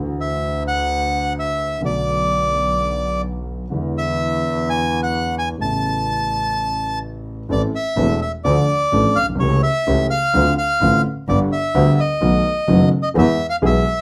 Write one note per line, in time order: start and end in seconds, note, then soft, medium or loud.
0.00 1.74 D2 medium
0.00 1.74 D3 medium
0.00 1.73 E3 medium
0.00 1.74 A3 soft
0.00 1.74 D4 soft
0.00 1.75 F#4 medium
0.21 0.63 E5 medium
0.68 1.33 F#5 loud
1.39 1.82 E5 medium
1.81 3.61 B1 medium
1.81 3.62 B1 medium
1.81 3.62 B2 medium
1.81 3.61 D3 medium
1.81 3.61 A3 soft
1.81 3.62 B3 medium
1.81 3.63 F#4 medium
1.86 3.22 D5 medium
3.70 5.51 E2 medium
3.70 5.50 D3 medium
3.70 5.51 E3 medium
3.70 5.51 G#3 soft
3.70 5.51 B3 medium
3.70 5.52 E4 medium
3.98 4.69 E5 medium
4.70 5.01 G#5 loud
5.03 5.35 F#5 loud
5.39 5.49 G#5 medium
5.58 7.40 A1 medium
5.58 7.40 A2 medium
5.58 7.39 C#3 medium
5.58 7.40 A3 medium
5.58 7.40 B3 soft
5.58 6.99 A5 loud
5.62 7.41 E4 medium
7.49 7.69 A1 medium
7.49 7.70 A1 loud
7.49 7.70 A2 medium
7.49 7.69 E3 medium
7.49 7.70 A3 medium
7.49 7.70 C4 medium
7.49 7.70 A4 medium
7.49 7.62 D5 medium
7.76 8.20 E5 loud
7.96 8.17 E1 medium
7.96 8.17 E1 loud
7.96 8.17 E2 medium
7.96 8.17 E3 medium
7.96 8.17 A3 medium
7.96 8.17 C4 medium
7.96 8.17 A4 medium
8.22 8.32 E5 medium
8.44 8.65 D2 medium
8.44 8.64 D3 medium
8.44 8.64 F3 medium
8.44 8.65 A3 medium
8.44 8.65 D4 medium
8.44 8.65 A4 medium
8.44 9.18 D5 loud
8.92 9.12 A1 medium
8.92 9.12 A1 loud
8.92 9.12 A2 medium
8.92 9.12 F3 medium
8.92 9.12 A3 medium
8.92 9.12 D4 medium
8.92 9.12 A4 medium
9.16 9.39 B1 medium
9.16 9.26 F5 loud
9.23 9.28 A#1 medium
9.29 9.34 B1 medium
9.35 9.40 C2 medium
9.40 9.59 C#2 loud
9.40 9.59 C#2 medium
9.40 9.59 C#3 medium
9.40 9.59 E3 medium
9.40 9.60 A3 medium
9.40 9.60 C#4 medium
9.40 9.60 G4 medium
9.40 9.61 C#5 medium
9.63 10.07 E5 loud
9.87 10.07 C#2 medium
9.87 10.07 C#3 medium
9.87 10.06 E3 medium
9.87 10.07 A3 medium
9.87 10.06 C#4 medium
9.87 10.07 G4 medium
10.10 10.54 F5 loud
10.34 10.54 D2 medium
10.34 10.54 D3 medium
10.34 10.54 A3 medium
10.34 10.54 C4 medium
10.34 10.54 F4 medium
10.58 11.01 F5 loud
10.80 11.00 A1 loud
10.80 11.01 A1 medium
10.80 11.01 A2 medium
10.80 11.01 D3 medium
10.80 11.01 A3 medium
10.80 11.01 C4 medium
10.80 11.01 F4 medium
11.28 11.48 G1 loud
11.28 11.48 G1 medium
11.28 11.48 G2 medium
11.28 11.48 D3 medium
11.28 11.48 G3 medium
11.28 11.48 B3 medium
11.28 11.48 G4 medium
11.28 11.39 D5 medium
11.52 12.00 E5 loud
11.75 11.95 D2 loud
11.75 11.95 D2 medium
11.75 11.95 D3 loud
11.75 11.95 G3 medium
11.75 11.95 B3 medium
11.75 11.95 G4 loud
12.00 12.89 D#5 medium
12.21 12.41 B1 medium
12.21 12.41 B2 medium
12.21 12.41 D#3 medium
12.21 12.41 A3 medium
12.21 12.41 B3 medium
12.21 12.42 F#4 medium
12.68 12.88 F#1 loud
12.68 12.89 F#1 loud
12.68 12.88 F#2 loud
12.68 12.88 D#3 medium
12.68 12.88 A3 medium
12.68 12.88 B3 medium
12.68 12.88 F#4 medium
13.03 13.09 D#5 loud
13.14 13.35 E2 medium
13.14 13.36 E2 loud
13.14 13.35 E3 medium
13.14 13.35 G#3 medium
13.14 13.35 B3 medium
13.14 13.35 G#4 medium
13.19 13.47 E5 loud
13.50 13.56 F5 loud
13.62 13.82 B1 medium
13.62 13.83 B1 loud
13.62 13.83 B2 medium
13.62 13.82 E3 medium
13.62 13.83 G#3 medium
13.62 13.83 B3 medium
13.62 13.83 G#4 medium
13.66 14.01 E5 medium